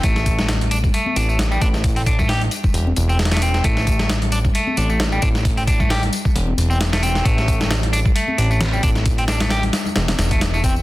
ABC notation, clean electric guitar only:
X:1
M:4/4
L:1/16
Q:"Swing 16ths" 1/4=133
K:Am
V:1 name="Clean electric guitar"
A,4 z2 D z A,2 D A, z G, D z | z C D A, G z6 C z A, C2 | A,4 z2 D z A,2 D A, z G, D z | z C D A, G z6 C z A, C2 |
A,4 z2 D z A,2 D A, z G, D z | z C D A, G z6 A, z A, C z |]